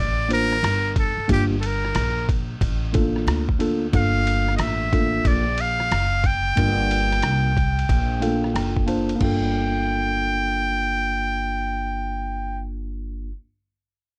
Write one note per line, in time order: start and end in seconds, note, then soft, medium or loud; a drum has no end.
0.00 0.60 A1 medium
0.00 0.31 D5 medium
0.29 0.56 A#3 medium
0.29 0.56 D4 medium
0.29 0.57 F4 medium
0.29 0.57 C5 medium
0.29 ride medium
0.33 0.94 A#4 medium
0.52 cross-stick soft
0.63 1.15 G1 medium
0.63 cross-stick loud
0.63 hi-hat pedal soft
0.63 ride medium
0.96 1.29 A4 medium
0.96 kick medium
0.96 ride medium
1.17 muted upright bass stroke soft
1.28 1.92 G1 medium
1.28 1.55 A#3 medium
1.28 1.55 D4 medium
1.28 1.56 F4 medium
1.28 1.56 G4 medium
1.28 kick loud
1.28 ride medium
1.32 1.44 G4 medium
1.60 1.68 A4 medium
1.60 ride medium
1.66 2.30 A#4 medium
1.85 cross-stick soft
1.95 2.58 A#1 medium
1.95 cross-stick loud
1.95 hi-hat pedal medium
1.95 ride medium
2.29 kick medium
2.29 ride medium
2.61 3.24 A1 medium
2.61 kick medium
2.61 ride medium
2.93 3.02 A3 medium
2.93 3.44 D4 medium
2.93 3.44 F4 medium
2.93 3.45 A4 medium
2.93 kick medium
2.93 ride medium
2.99 3.47 A#3 medium
3.16 cross-stick soft
3.27 3.90 D2 medium
3.27 cross-stick loud
3.27 hi-hat pedal soft
3.27 ride medium
3.49 kick medium
3.59 3.86 A#3 medium
3.59 3.86 D4 medium
3.59 3.86 F4 medium
3.59 3.87 A4 medium
3.59 ride medium
3.92 4.56 G1 loud
3.92 4.87 A#3 medium
3.92 4.87 D4 medium
3.92 4.88 F4 medium
3.92 4.88 A4 medium
3.92 4.51 F5 medium
3.92 kick medium
3.92 ride medium
4.27 ride medium
4.48 cross-stick soft
4.56 5.22 A1 medium
4.56 4.63 D#5 medium
4.56 cross-stick loud
4.56 hi-hat pedal medium
4.56 ride medium
4.61 5.28 E5 medium
4.92 5.01 A3 medium
4.92 5.43 D4 medium
4.92 5.43 F4 medium
4.92 5.43 A4 medium
4.92 kick medium
4.92 ride medium
4.98 5.45 A#3 medium
5.25 5.88 A#1 medium
5.25 5.62 D5 medium
5.25 kick medium
5.25 ride medium
5.58 6.28 F5 medium
5.58 ride medium
5.80 cross-stick soft
5.91 6.54 F#1 medium
5.91 cross-stick loud
5.91 hi-hat pedal soft
5.91 ride medium
6.24 8.56 G5 medium
6.24 kick medium
6.24 ride medium
6.56 7.20 G1 loud
6.56 7.51 A#3 medium
6.56 7.51 D4 medium
6.56 7.52 F4 medium
6.56 7.52 A#4 medium
6.56 kick loud
6.56 ride medium
6.91 ride medium
7.12 cross-stick soft
7.12 ride soft
7.22 7.86 C2 medium
7.22 cross-stick loud
7.22 hi-hat pedal soft
7.22 ride medium
7.57 kick medium
7.57 ride medium
7.79 ride soft
7.89 8.52 A#1 medium
7.89 kick medium
7.89 ride medium
8.20 8.30 A3 medium
8.20 8.86 D4 medium
8.20 8.87 F4 medium
8.20 9.17 A4 medium
8.20 8.53 F5 medium
8.20 ride medium
8.27 8.85 A#3 medium
8.44 cross-stick soft
8.54 9.17 F#1 medium
8.54 8.85 G5 medium
8.54 cross-stick medium
8.54 hi-hat pedal soft
8.54 ride medium
8.77 kick medium
8.86 9.13 A#3 medium
8.86 9.14 D4 medium
8.86 9.14 F4 medium
8.86 9.14 C5 medium
8.86 9.18 A5 medium
8.86 ride medium
9.09 ride soft
9.15 13.28 A#3 medium
9.15 13.30 D4 medium
9.21 13.30 G1 medium
9.21 13.31 F4 medium
9.21 13.32 A4 medium
9.21 12.62 G5 medium
9.21 kick medium
9.21 crash medium